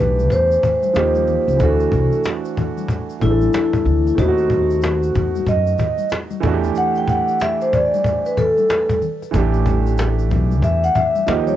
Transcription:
Already playing: grand piano E3 A3 D4 G4, vibraphone B4
0.00 upright bass B1
0.19 high conga, shaker
0.30 upright bass E2, vibraphone C5, cajon bass, high conga, shaker
0.51 shaker
0.63 cajon bass, low conga, shaker
0.83 high conga, shaker
0.93 upright bass D#2, grand piano F3 A#3 D#4 G4, cajon slap, shaker
1.15 high conga, shaker
1.27 cajon slap, low conga, shaker
1.48 upright bass C#2, cajon slap, shaker
1.57 upright bass D2, grand piano E3 A3, vibraphone A4, cajon bass, shaker
1.61 grand piano D4 F#4
1.80 shaker
1.92 upright bass C2, cajon bass, high conga, shaker
2.12 cajon slap, shaker
2.24 cajon slap, shaker
2.45 shaker
2.57 cajon bass, low conga, shaker
2.77 high conga, shaker
2.88 cajon bass, high conga, shaker
3.10 shaker
3.20 upright bass A1, grand piano E3 A3 D4 G#4, vibraphone E4, cajon bass, low conga, shaker
3.30 grand piano A4
3.42 high conga, shaker
3.53 cajon slap, shaker
3.73 cajon bass, high conga, shaker
3.85 upright bass D2, cajon slap, low conga, shaker
4.07 cajon slap, shaker
4.15 upright bass D#2, grand piano A3 C4, vibraphone F#4, cajon bass, shaker
4.20 grand piano D#4 E4
4.28 grand piano F#4
4.38 shaker
4.50 cajon bass, high conga, shaker
4.70 cajon slap, shaker
4.82 cajon slap, shaker
5.03 shaker
5.15 upright bass E2, cajon bass, low conga, shaker
5.35 high conga, shaker
5.46 upright bass F#2, vibraphone D#5, cajon bass, high conga, shaker
5.67 shaker
5.78 cajon bass, low conga, shaker
5.98 high conga, shaker
6.10 cajon slap, shaker
6.31 high conga, shaker
6.41 upright bass E2, grand piano E3 A3, cajon bass, low conga, shaker
6.45 grand piano D4 F#4
6.54 grand piano G4
6.64 cajon slap, shaker
6.75 vibraphone F#5, cajon slap, shaker
6.95 vibraphone G5, shaker
7.08 vibraphone F#5, cajon bass, high conga, shaker
7.28 shaker
7.40 vibraphone E5, cajon slap, shaker
7.61 vibraphone C5, shaker
7.73 vibraphone D5, cajon bass, low conga, shaker
7.92 cajon slap, high conga, shaker
8.04 cajon bass, high conga, shaker
8.26 vibraphone B4, shaker
8.37 vibraphone A4, cajon bass, low conga, shaker
8.58 cajon slap, high conga, shaker
8.69 cajon slap, shaker
8.89 cajon bass, cajon slap, high conga, shaker
9.02 cajon slap, low conga, shaker
9.22 cajon slap, shaker
9.31 upright bass A1, grand piano E3 A3, cajon bass, shaker
9.36 grand piano D4 G4
9.54 shaker
9.66 cajon bass, high conga, shaker
9.86 cajon slap, shaker
9.98 cajon slap, shaker
10.19 shaker
10.31 upright bass B1, cajon bass, low conga, shaker
10.52 high conga, shaker
10.62 upright bass E2, vibraphone E5, cajon bass, high conga, shaker
10.84 vibraphone F#5, shaker
10.95 vibraphone E5, cajon bass, low conga, shaker
11.15 high conga, shaker
11.27 upright bass D#2, grand piano F3 A#3 D#4 G4, vibraphone D#5, cajon slap, shaker
11.47 vibraphone C#5, high conga, shaker

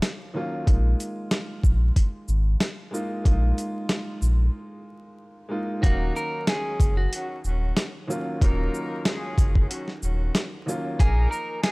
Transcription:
Already playing: upright piano D#2 F#3 A#3 C#4 F4
0.02 snare, closed hi-hat
0.34 upright piano D#2 F#3 A#3 C#4 F4
0.66 sub bass A#1, upright piano G#3 A#3 D#4 F4, kick, closed hi-hat
1.00 closed hi-hat, shaker
1.31 snare, closed hi-hat
1.64 sub bass A#1, kick, shaker
1.96 kick, closed hi-hat
2.28 sub bass G#1, shaker
2.60 snare, closed hi-hat
2.91 upright piano G#3 A#3 D#4 F4, shaker
3.24 sub bass A#1, upright piano G#3 A#3 D#4 F4, kick, closed hi-hat
3.58 closed hi-hat, shaker
3.89 snare, closed hi-hat
4.22 sub bass A#1, shaker
5.49 upright piano G#3 A#3 D#4 F4
5.81 sub bass D#1, upright piano D#2 F#3 A#3 C#4 F5, horn section F#3 A#3 D#4 A#4, clean electric guitar F#4, kick, closed hi-hat
6.16 clean electric guitar A#4, shaker
6.47 horn section D#3 G#3 C#4 G#4, clean electric guitar G#4, snare, closed hi-hat
6.80 sub bass F#1, kick, closed hi-hat, shaker
6.97 clean electric guitar F#4
7.13 horn section D#3 F#3 C#4 F#4, closed hi-hat
7.44 sub bass D#1, horn section D#3 F#3 C#4 F#4, shaker
7.77 snare, closed hi-hat
8.07 upright piano D#2 F#3 A#3 C#4 F4, shaker
8.41 sub bass D#1, upright piano D#2 F#3 A#3 C#4 F4, horn section F#3 A#3 D#4 A#4, kick, closed hi-hat
8.74 shaker
9.05 horn section D#3 G#3 C#4 G#4, snare, closed hi-hat
9.38 sub bass F#1, kick, closed hi-hat, shaker
9.55 kick
9.69 horn section D#3 F#3 C#4 F#4, closed hi-hat
9.88 snare
10.03 sub bass D#1, horn section D#3 F#3 C#4 F#4, shaker
10.35 snare, closed hi-hat
10.66 upright piano D#2 F#3 A#3 C#4 F4, shaker
10.99 sub bass A#1, horn section F3 A#3 D#4 A#4, clean electric guitar G#4, kick, closed hi-hat
11.31 clean electric guitar A#4, shaker
11.62 horn section F3 G#3 D#4 G#4, clean electric guitar G#4, snare, closed hi-hat

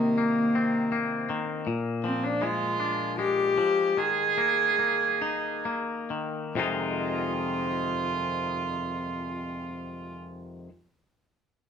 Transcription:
Already playing: clean electric guitar C3 D#3, cello A#3
0.18 clean electric guitar A#3
0.55 clean electric guitar C4
0.92 clean electric guitar A#3
1.30 clean electric guitar D#3
1.67 clean electric guitar A#2
2.04 clean electric guitar F3, cello C4
2.24 cello D4
2.42 clean electric guitar G#3, cello F4
2.80 clean electric guitar D4
3.19 clean electric guitar G#3, cello G4
3.58 clean electric guitar F3
3.97 clean electric guitar D#3, cello G#4
4.38 clean electric guitar A#3
4.79 clean electric guitar A#3
5.22 clean electric guitar D#4
5.65 clean electric guitar A#3
6.10 clean electric guitar D#3
6.55 clean electric guitar F2 C3 D#3 G#3 D#4 F4, cello F4

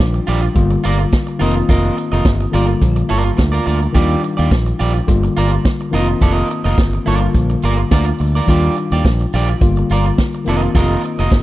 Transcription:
Already playing: tine electric piano D#3 G3 D4 F4
0.00 fingered electric bass A#1, snare
0.14 muted clean electric guitar stroke, closed hi-hat
0.27 fingered electric bass A#1, clean electric guitar F4 G4 D5, open hi-hat
0.42 muted clean electric guitar stroke, closed hi-hat
0.55 fingered electric bass G1, tine electric piano D3 G3 A#3 F4, kick, closed hi-hat
0.71 muted clean electric guitar stroke, closed hi-hat
0.84 fingered electric bass G1, clean electric guitar F4 A#4 D5, closed hi-hat
0.99 muted clean electric guitar stroke, closed hi-hat
1.12 kick, snare, tambourine
1.27 muted clean electric guitar stroke, closed hi-hat
1.39 fingered electric bass F1, tine electric piano D#3 A#3 C4 F4, clean electric guitar F4 A#4 D#5, open hi-hat
1.56 muted clean electric guitar stroke, closed hi-hat
1.69 fingered electric bass F1, clean electric guitar F4 A#4 D#5, kick, closed hi-hat
1.84 closed hi-hat
1.97 muted clean electric guitar stroke, closed hi-hat
2.12 fingered electric bass F1, clean electric guitar F4 A#4 D#5, closed hi-hat
2.25 fingered electric bass G1, kick, snare, tambourine
2.40 muted clean electric guitar stroke, closed hi-hat
2.52 fingered electric bass G1, tine electric piano D3 G3 A#3 F4, clean electric guitar F4 A#4 D5, open hi-hat
2.67 muted clean electric guitar stroke, closed hi-hat
2.82 fingered electric bass A#1, kick, closed hi-hat
2.96 muted clean electric guitar stroke, closed hi-hat
3.09 fingered electric bass G1, clean electric guitar F4 A#4 D5, closed hi-hat
3.25 muted clean electric guitar stroke, closed hi-hat
3.37 fingered electric bass D2, muted clean electric guitar stroke, kick, snare, tambourine
3.52 clean electric guitar F4 A#4 D5, closed hi-hat
3.66 fingered electric bass D2, clean electric guitar F4 A#4 D5, open hi-hat
3.81 muted clean electric guitar stroke, closed hi-hat
3.93 fingered electric bass D#2, tine electric piano D#3 F3 D4 F4, clean electric guitar F4 G4 D5, kick, closed hi-hat
4.00 tine electric piano G3
4.10 closed hi-hat
4.23 muted clean electric guitar stroke, closed hi-hat
4.37 fingered electric bass D#2, clean electric guitar F4 G4 D5, closed hi-hat
4.51 fingered electric bass A#1, kick, snare, tambourine
4.66 muted clean electric guitar stroke, closed hi-hat
4.79 fingered electric bass A#1, clean electric guitar F4 G4 D5, open hi-hat
4.94 muted clean electric guitar stroke, closed hi-hat
5.07 fingered electric bass G1, tine electric piano D3 G3 A#3 F4, kick, closed hi-hat
5.23 muted clean electric guitar stroke, closed hi-hat
5.37 fingered electric bass G1, clean electric guitar F4 A#4 D5, closed hi-hat
5.52 muted clean electric guitar stroke, closed hi-hat
5.65 kick, snare, tambourine
5.80 muted clean electric guitar stroke, closed hi-hat
5.91 fingered electric bass F1, tine electric piano D#3 A#3 C4 E4, clean electric guitar F4 A#4, open hi-hat
5.95 clean electric guitar D#5
6.01 tine electric piano F4
6.09 muted clean electric guitar stroke, closed hi-hat
6.21 fingered electric bass F1, clean electric guitar E4 A4 D5, kick, closed hi-hat
6.33 clean electric guitar F4 A#4 D#5
6.37 closed hi-hat
6.50 muted clean electric guitar stroke, closed hi-hat
6.64 fingered electric bass F1, clean electric guitar F4 A#4 D#5, closed hi-hat
6.78 fingered electric bass G1, kick, snare, tambourine
6.93 muted clean electric guitar stroke, closed hi-hat
7.05 fingered electric bass G1, tine electric piano D3 G3 A#3 F4, clean electric guitar F4 A#4 D5, open hi-hat
7.21 muted clean electric guitar stroke, closed hi-hat
7.34 fingered electric bass A#1, kick, closed hi-hat
7.49 muted clean electric guitar stroke, closed hi-hat
7.62 fingered electric bass G1, clean electric guitar F4 A#4 D5, closed hi-hat
7.78 muted clean electric guitar stroke, closed hi-hat
7.91 fingered electric bass D2, clean electric guitar F4 A#4 D5, kick, snare, tambourine
8.05 muted clean electric guitar stroke, closed hi-hat
8.18 fingered electric bass D2, muted clean electric guitar stroke, open hi-hat
8.35 clean electric guitar F4 A#4 D5, closed hi-hat
8.46 fingered electric bass D#2, tine electric piano D#3 G3 D4 F4, clean electric guitar F4 G4, kick, closed hi-hat
8.50 clean electric guitar D5
8.63 closed hi-hat
8.76 muted clean electric guitar stroke, closed hi-hat
8.91 fingered electric bass D#2, clean electric guitar F4 G4 D5, snare, closed hi-hat
9.05 fingered electric bass A#1, kick, snare, tambourine
9.19 muted clean electric guitar stroke, closed hi-hat
9.33 fingered electric bass A#1, clean electric guitar F4 G4 D5, open hi-hat
9.48 muted clean electric guitar stroke, closed hi-hat
9.61 fingered electric bass G1, tine electric piano D3 G3 A#3 F4, kick, closed hi-hat
9.76 muted clean electric guitar stroke, closed hi-hat
9.90 fingered electric bass G1, clean electric guitar F4 A#4 D5, closed hi-hat
10.05 muted clean electric guitar stroke, closed hi-hat
10.18 kick, snare, tambourine
10.32 muted clean electric guitar stroke, closed hi-hat
10.45 fingered electric bass F1, tine electric piano D#3 A#3 C4 F4, clean electric guitar F4 A#4, open hi-hat
10.49 clean electric guitar D#5
10.62 muted clean electric guitar stroke, closed hi-hat
10.75 fingered electric bass F1, clean electric guitar F4 A#4 D#5, kick, closed hi-hat
10.90 closed hi-hat
11.03 muted clean electric guitar stroke, closed hi-hat
11.18 fingered electric bass F1, clean electric guitar F4 A#4 D#5, snare, closed hi-hat
11.32 fingered electric bass G1, kick, snare, tambourine

